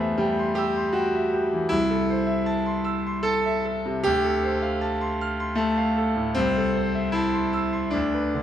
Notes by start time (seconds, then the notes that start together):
Already playing: E2 A3 B3 G4 C5
0.01 E5
0.17 G3 G5
0.39 C6
0.55 G4 E6
0.76 C6
0.93 F#4 G5
1.15 E5
1.34 G4
1.53 E3
1.69 C2 E4
1.90 A4
2.10 C5
2.27 E5
2.46 A5
2.66 C6
2.84 E6
3.07 C6
3.23 A4 A5
3.46 E5
3.65 A4
3.86 C3
4.04 D2 G4
4.24 A4
4.44 C5
4.62 F5
4.81 A5
5.01 C6
5.21 F6
5.40 C6
5.55 A3 A5
5.77 F5
5.98 A4
6.16 A2
6.34 C2 C4
6.57 A4
6.76 C5
6.95 E5
7.12 E4 A5
7.34 C6
7.53 E6
7.73 C6
7.91 D2 D4
8.14 B4
8.34 D3